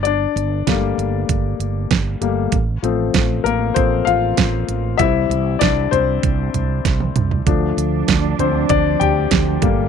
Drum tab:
HH |x-x-x-x-x-x-x-x-|x-x-x-x-x-x-x-x-|x-x-x-x-x-x-x-x-|x-x-x-x-x-x-x-x-|
SD |----o-------o---|----o-------o---|----o-------o---|----o-------o---|
T1 |----------------|----------------|-------------o--|----------------|
T2 |----------------|----------------|--------------o-|----------------|
FT |----------------|----------------|------o---o----o|------o---o-----|
BD |----o---o---o---|o---o---o---o---|o---o---o---o---|o---o---o---o-o-|